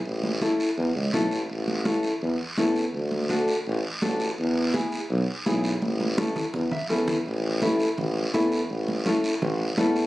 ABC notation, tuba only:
X:1
M:4/4
L:1/16
Q:1/4=167
K:A
V:1 name="Tuba" clef=bass
A,,,4- A,,, z3 E,,2 C,,2 B,,,2 A,,,2 | A,,,8 E,,2 z2 E,,4 | D,,8 A,,,2 z2 A,,,4 | E,,4- E,, z3 B,,,2 z2 B,,,4 |
A,,,8 E,,2 z2 E,,4 | A,,,8 A,,,4 E,,4 | A,,,4- A,,, z3 A,,,4 E,,4 |]